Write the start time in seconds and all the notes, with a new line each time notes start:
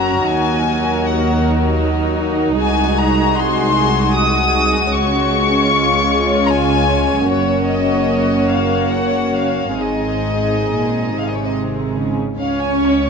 Already playing: F#1 F#2 F#3 C#4 F#4 A#4 A#5
0.27 D#2 D#4 G#5
1.05 F#5
2.58 C2 G#3 F#4 G#4 G#5
2.97 A#5
3.37 C6
4.13 D#6
4.92 C#2 C#4 C#5 C#6
5.72 F4
6.44 A#5
6.50 G#5
7.26 F#1 F#2 A#3 F#4 C#5
7.68 D#5
8.48 F5
8.91 F#5
9.33 F5
9.76 G#1 G#2 G#3 C4 D#4 G#4 D#5
10.67 A#2
11.10 C3
11.19 F5
11.27 D#5
11.34 C#5
11.44 D#5
11.95 C#3
12.39 C#2 C#4 C#5 F5
12.62 G#5
12.86 C#6